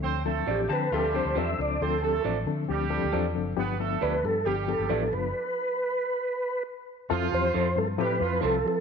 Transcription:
<<
  \new Staff \with { instrumentName = "Clean electric guitar" } { \time 4/4 \key d \dorian \tempo 4 = 136 r4 <f' c'' d''>8 r4. <f' c'' d''>8 r8 | r4 <f' c'' d''>8 r4. <f' c'' d''>8 r8 | r4 <f' b' d''>8 r4. <f' b' d''>8 r8 | r1 |
r4 <e' a' c''>8 r4. <e' a' c''>8 r8 | }
  \new Staff \with { instrumentName = "Tonewheel organ" } { \time 4/4 \key d \dorian r4 g'8 b'8 a'8 c''8 e''8 d''8 | a'4 r2. | r4 b'8 a'8 g'8 a'4 b'8~ | b'2. r4 |
r8 c''4 a'8 b'4 a'8 a'8 | }
  \new Staff \with { instrumentName = "Horn section" } { \time 4/4 \key d \dorian <c' c''>8 <a a'>4 r8 <g g'>4. r8 | <c' c''>8 <a a'>4 r8 <g g'>4. r8 | <b b'>8 <a a'>4 r8 <g g'>4. r8 | r1 |
<f f'>4. r8 <g g'>8 <f f'>4 r8 | }
  \new Staff \with { instrumentName = "Clean electric guitar" } { \time 4/4 \key d \dorian r4. <c' a'>8 <a f'>8 <f d'>4. | r1 | r1 | r1 |
r1 | }
  \new Staff \with { instrumentName = "Reed electric piano" } { \time 4/4 \key d \dorian <f c' d' a'>8 <f c' d' a'>8 <f c' d' f'>8 <f c' d'>8 <f c' d' b'>8 <f c' d' g'>8 <f c' d' a'>8 <f c' d' a'>8 | <f c' d' f'>8 <f c' d' g'>8 <f c' d' a'>8 <f c' d' a'>8 <f c' d' g'>8 <f c' d' a'>8 <f c' d' a'>8 <f c' d' a'>8 | <f b d' g'>8 <f b d' a'>8 <f b g'>8 <f b d' g'>8 <f b d' a'>8 <f b d' g'>8 <f b d' e'>8 <f b d' f'>8 | r1 |
<f c' e' a'>8 <f c' e' g'>8 <f c' e' a'>8 <f c' e' b'>8 <f c' e' a'>8 <f c' e' b'>8 <f c' e' a'>8 <f c' e' b'>8 | }
  \new Staff \with { instrumentName = "Fingered electric bass" } { \clef bass \time 4/4 \key d \dorian d,4 a,,8 d8 d,8. d,16 e,8 des,8 | d,4 a,,8 d8 d,8. d,16 e,8 fis,,8 | g,,4 d,8 g,8 g,,8. g,,16 a,,8 fis,,8 | r1 |
f,8 e,8 f,8 g,8 a,8 f,8 c,8 f8 | }
>>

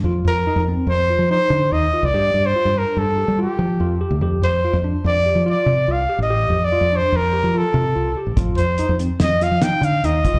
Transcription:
<<
  \new Staff \with { instrumentName = "Trumpet" } { \time 5/4 \key f \mixolydian \tempo 4 = 144 r8 bes'4 r8 c''4 c''4 ees''8. d''16~ | d''8. c''8. bes'8 a'4 g'4. r8 | r8 c''4 r8 d''4 d''4 f''8. ees''16~ | ees''8. d''8. c''8 bes'4 a'4. r8 |
r8 c''4 r8 ees''8 f''8 g''8 f''8 ees''4 | }
  \new Staff \with { instrumentName = "Tine electric piano" } { \time 5/4 \key f \mixolydian f'4 ees'8 c'4 f'8 ees'4 ees'8 f'8 | g'4 f'8 d'4 g'8 f'4 f'8 g'8 | g'4 f'8 d'4 g'8 f'4 f'8 g'8 | g'4 f'8 d'4 g'8 f'4 f'8 g'8 |
f'4 ees'8 c'4 f'8 ees'4 ees'8 f'8 | }
  \new Staff \with { instrumentName = "Fingered electric bass" } { \clef bass \time 5/4 \key f \mixolydian f,8 f,8 r16 f,8 r16 f,8. f8 r16 d8 ees,8 r16 c,16 | g,8 g,8 r16 g,8 r16 g,8. g8 r16 f8 f,8 r16 d,16 | f,8 f,8 r16 f,8 r16 f,8. f8 r16 c8 c,8 r16 a,,16~ | a,,8 f,8 r16 f,8 r16 f,8. f8 r16 c8 c,8 r16 a,,16 |
f,8 f,8 r16 f,8 r16 f,8. f8 r16 d8 ees,8 r16 c,16 | }
  \new DrumStaff \with { instrumentName = "Drums" } \drummode { \time 5/4 r4 r4 r4 r4 r4 | r4 r4 r4 r4 r4 | r4 r4 r4 r4 r4 | r4 r4 r4 r4 r4 |
<hh bd>8 hh8 hh8 hh8 <hh sn>8 <hh sn>8 <hh sn>8 hh8 hh8 <hh bd>8 | }
>>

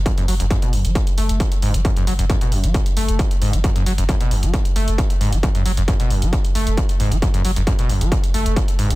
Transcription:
<<
  \new Staff \with { instrumentName = "Acid bass" } { \clef bass \time 4/4 \key fis \minor \tempo 4 = 134 fis,16 fis,16 fis16 fis,16 fis,16 b,16 fis,16 fis16 fis,,16 r16 a8 fis,16 r16 gis,16 fis16 | fis,16 fis,16 fis16 fis,16 fis,16 b,16 fis,16 fis16 fis,,16 r16 a8 fis,16 r16 gis,16 fis16 | fis,16 fis,16 fis16 fis,16 fis,16 b,16 fis,16 fis16 fis,,16 r16 a8 fis,16 r16 gis,16 fis16 | fis,16 fis,16 fis16 fis,16 fis,16 b,16 fis,16 fis16 fis,,16 r16 a8 fis,16 r16 gis,16 fis16 |
fis,16 fis,16 fis16 fis,16 fis,16 b,16 fis,16 fis16 fis,,16 r16 a8 fis,16 r16 gis,16 fis16 | }
  \new Staff \with { instrumentName = "Sub bass" } { \clef bass \time 4/4 \key fis \minor r8 fis,,16 fis,,16 r8 fis,,16 fis,,16 r8 fis,,16 fis,,16 r8 fis,,16 fis,,16 | r8 fis,,16 fis,,16 r8 fis,,16 fis,,16 r8 fis,,16 fis,,16 r8 fis,,16 fis,,16 | r8 fis,,16 fis,,16 r8 fis,,16 fis,,16 r8 fis,,16 fis,,16 r8 fis,,16 fis,,16 | r8 fis,,16 fis,,16 r8 fis,,16 fis,,16 r8 fis,,16 fis,,16 r8 fis,,16 fis,,16 |
r8 fis,,16 fis,,16 r8 fis,,16 fis,,16 r8 fis,,16 fis,,16 r8 fis,,16 fis,,16 | }
  \new DrumStaff \with { instrumentName = "Drums" } \drummode { \time 4/4 <hh bd>16 hh16 hho16 hh16 <hh bd>16 hh16 hho16 hh16 <hh bd>16 hh16 hho16 hh16 <hh bd>16 hh16 hho16 hh16 | <hh bd>16 hh16 hho16 hh16 <hh bd>16 hh16 hho16 hh16 <hh bd>16 hh16 hho16 hh16 <hh bd>16 hh16 hho16 hh16 | <hh bd>16 hh16 hho16 hh16 <hh bd>16 hh16 hho16 hh16 <hh bd>16 hh16 hho16 hh16 <hh bd>16 hh16 hho16 hh16 | <hh bd>16 hh16 hho16 hh16 <hh bd>16 hh16 hho16 hh16 <hh bd>16 hh16 hho16 hh16 <hh bd>16 hh16 hho16 hh16 |
<hh bd>16 hh16 hho16 hh16 <hh bd>16 hh16 hho16 hh16 <hh bd>16 hh16 hho16 hh16 <hh bd>16 hh16 hho16 hh16 | }
>>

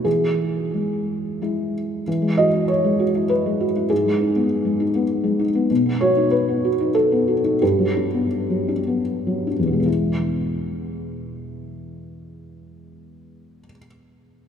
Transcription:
<<
  \new Staff \with { instrumentName = "Felt piano" } { \time 3/4 \key e \major \tempo 4 = 88 gis'2~ gis'8 r8 | r8 dis''8 cis''4 b'4 | gis'2~ gis'8 r8 | r8 cis''8 b'4 a'4 |
g'2~ g'8 r8 | <e, b, gis b e'>2.~ | <e, b, gis b e'>2. | }
  \new Staff \with { instrumentName = "Felt piano" } { \time 3/4 \key e \major e4 gis4 <gis e'>4 | e16 gis16 fis'16 e'8 gis16 fis'16 e'8 gis16 fis'16 e'16 | gis,16 gis16 dis'16 b8 gis16 dis'16 b8 gis16 dis'16 b16 | b,16 b16 fis'16 dis'8 b16 fis'16 dis'8 b16 fis'16 dis'16 |
g,16 fis16 d'16 b8 fis16 d'16 b8 fis16 d'16 b16 | r2. | r2. | }
>>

